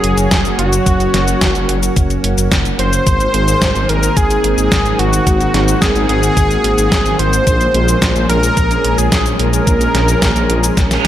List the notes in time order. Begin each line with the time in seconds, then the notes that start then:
Already playing: F#3 A#3 C#4 F#4 G#4
0.04 F#1, closed hi-hat
0.17 F#1, closed hi-hat, shaker
0.31 F#1, kick, snare, closed hi-hat, shaker
0.45 closed hi-hat, shaker
0.59 F#1 F#4, closed hi-hat
0.73 closed hi-hat, shaker
0.86 F#1, kick, closed hi-hat, shaker
1.00 closed hi-hat, shaker
1.14 F#1, snare, closed hi-hat
1.28 closed hi-hat, shaker
1.41 F#1, kick, snare, closed hi-hat, shaker
1.55 F#1, closed hi-hat, shaker
1.69 F#1, closed hi-hat
1.83 closed hi-hat, shaker
1.96 F#1, kick, closed hi-hat, shaker
2.10 closed hi-hat, shaker
2.24 F#1, closed hi-hat
2.38 F#1, closed hi-hat, shaker
2.52 F#1, kick, snare, closed hi-hat, shaker
2.65 closed hi-hat, shaker
2.79 F#1 C5, closed hi-hat
2.93 closed hi-hat, shaker
3.07 G#1 D#3 G#3 C4 G#4, kick, closed hi-hat, shaker
3.20 closed hi-hat, shaker
3.34 G#1, closed hi-hat
3.48 closed hi-hat, shaker
3.62 G#1, kick, snare, closed hi-hat, shaker
3.75 G#1, closed hi-hat, shaker
3.89 G#1 A#4, closed hi-hat
4.03 closed hi-hat, shaker
4.17 G#1 G#4, kick, closed hi-hat, shaker
4.30 closed hi-hat, shaker
4.44 G#1, closed hi-hat
4.58 G#1 G#4, closed hi-hat, shaker
4.72 G#1, kick, snare, closed hi-hat, shaker
4.86 closed hi-hat, shaker
4.99 G#1 F#4, closed hi-hat
5.13 closed hi-hat, shaker
5.27 G#1 F#4, kick, closed hi-hat, shaker
5.41 closed hi-hat, shaker
5.54 G#1, snare, closed hi-hat
5.68 closed hi-hat, shaker
5.82 G#1 G#4, kick, snare, closed hi-hat, shaker
5.96 G#1, closed hi-hat, shaker
6.09 G#1 G#4, closed hi-hat
6.23 closed hi-hat, shaker
6.37 G#1, kick, closed hi-hat, shaker
6.51 closed hi-hat, shaker
6.64 G#1, closed hi-hat
6.78 G#1, closed hi-hat, shaker
6.92 G#1, kick, snare, closed hi-hat, shaker
7.06 closed hi-hat, shaker
7.19 G#1 C5, closed hi-hat
7.33 closed hi-hat, shaker
7.47 A#1 F3 C#4 G#4, kick, closed hi-hat, shaker
7.61 closed hi-hat, shaker
7.74 A#1, closed hi-hat
7.88 closed hi-hat, shaker
8.02 A#1, kick, snare, closed hi-hat, shaker
8.16 A#1, closed hi-hat, shaker
8.29 A#1 A#4, closed hi-hat
8.43 closed hi-hat, shaker
8.57 A#1, kick, closed hi-hat, shaker
8.71 closed hi-hat, shaker
8.85 A#1, closed hi-hat
8.98 A#1 G#4, closed hi-hat, shaker
9.12 A#1 G#4, kick, snare, closed hi-hat, shaker
9.26 closed hi-hat, shaker
9.39 A#1 A#4, closed hi-hat
9.53 closed hi-hat, shaker
9.67 A#1, kick, closed hi-hat, shaker
9.81 closed hi-hat, shaker
9.95 A#1, snare, closed hi-hat
10.08 closed hi-hat, shaker
10.22 A#1, kick, snare, closed hi-hat, shaker
10.36 A#1, closed hi-hat, shaker
10.50 A#1, closed hi-hat
10.63 closed hi-hat, shaker
10.77 A#1, kick, snare, closed hi-hat, reverse cymbal, shaker
10.91 snare, closed hi-hat, shaker